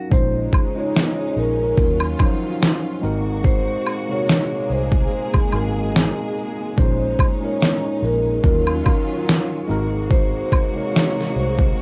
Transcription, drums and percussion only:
0.11 kick loud
0.11 shaker medium
0.53 kick medium
0.53 high woodblock medium
0.53 shaker medium
0.94 snare loud
0.94 shaker medium
1.37 shaker soft
1.77 kick medium
1.77 shaker medium
2.00 high woodblock medium
2.19 kick medium
2.19 high woodblock medium
2.19 shaker soft
2.62 snare loud
2.62 shaker medium
3.03 shaker medium
3.44 kick loud
3.44 shaker medium
3.87 high woodblock medium
3.87 shaker soft
4.27 snare loud
4.27 shaker medium
4.71 shaker soft
4.92 kick medium
5.10 shaker medium
5.34 kick medium
5.34 high woodblock medium
5.52 high woodblock medium
5.52 shaker soft
5.96 snare loud
5.96 shaker medium
6.37 shaker medium
6.78 kick loud
6.78 shaker medium
7.19 kick medium
7.19 high woodblock medium
7.19 shaker soft
7.60 snare loud
7.60 shaker medium
8.04 shaker soft
8.44 kick medium
8.44 shaker medium
8.67 high woodblock medium
8.86 kick medium
8.86 high woodblock medium
8.86 shaker soft
9.29 snare loud
9.29 shaker medium
9.70 shaker medium
10.11 kick loud
10.11 shaker medium
10.52 kick medium
10.52 high woodblock medium
10.52 shaker soft
10.93 snare loud
10.93 shaker medium
11.20 snare soft
11.37 shaker soft
11.59 kick medium
11.77 shaker medium

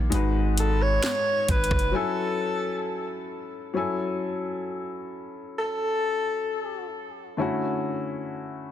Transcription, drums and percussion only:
0.12 closed hi-hat medium
0.57 closed hi-hat medium
1.03 snare loud
1.03 closed hi-hat medium
1.48 kick medium
1.48 closed hi-hat medium
1.64 closed hi-hat medium
1.71 kick loud
1.71 cross-stick medium
1.79 closed hi-hat soft

